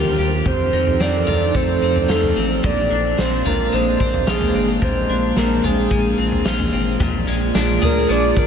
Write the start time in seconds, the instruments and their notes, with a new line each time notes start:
Already playing: analog synth bass D#2, ambient pad D#3 D4 F4 G4, clean electric guitar D#3 D4 F4 G4, soft synth lead G4
0.05 floor tom
0.18 analog synth bass D#2, clean electric guitar G4
0.45 clean electric guitar F2, analog synth bass F2, ambient pad F3 C4 D#4 A4, soft synth lead C5, kick, floor tom
0.73 analog synth bass F2, clean electric guitar D#4
0.87 floor tom
1.00 analog synth bass F2, clean electric guitar C4, soft synth lead D5, snare
1.27 analog synth bass F2, clean electric guitar F4, floor tom
1.55 analog synth bass F2, clean electric guitar A3, soft synth lead C5, kick
1.82 analog synth bass F2, clean electric guitar C4
1.96 floor tom
2.09 analog synth bass F2, clean electric guitar F4, soft synth lead A4, snare
2.23 floor tom
2.36 analog synth bass A1, clean electric guitar C4
2.63 analog synth bass A#1, clean electric guitar A#2, ambient pad G#3 A#3 D4, soft synth lead D5, kick, floor tom
2.91 analog synth bass A#1, clean electric guitar D4
3.18 analog synth bass A#1, clean electric guitar C4, soft synth lead C5, snare
3.45 analog synth bass A#1, clean electric guitar F4, soft synth lead A#4, floor tom
3.72 analog synth bass A#1, clean electric guitar G#3, soft synth lead C5
4.00 analog synth bass A#1, clean electric guitar C4, kick
4.14 floor tom
4.27 analog synth bass A#1, clean electric guitar F4, soft synth lead G#4, snare
4.41 floor tom
4.54 analog synth bass G#1, clean electric guitar C4
4.82 analog synth bass A#1, clean electric guitar A#2, soft synth lead C5, kick, floor tom
5.09 analog synth bass A#1, clean electric guitar D4
5.36 analog synth bass A#1, clean electric guitar C4, soft synth lead A#4, snare
5.64 analog synth bass A#1, clean electric guitar F4, soft synth lead G#4, floor tom
5.91 analog synth bass A#1, clean electric guitar G#3, kick
6.18 analog synth bass A#1, clean electric guitar C4
6.32 floor tom
6.45 analog synth bass A#1, clean electric guitar F4, snare
6.59 floor tom
6.73 analog synth bass G#1, clean electric guitar C4
7.00 analog synth bass A#1, clean electric guitar A#2, ambient pad A#3 F4 G#4 D5, kick, floor tom, tambourine
7.27 analog synth bass A#1, clean electric guitar G#3, tambourine
7.55 analog synth bass A#1, clean electric guitar D4, snare, tambourine
7.82 analog synth bass D2, clean electric guitar G#4, soft synth lead A#4, floor tom, tambourine
8.09 analog synth bass A#1, clean electric guitar F3, soft synth lead D5, tambourine
8.36 analog synth bass A#1, clean electric guitar D4, soft synth lead A#4, kick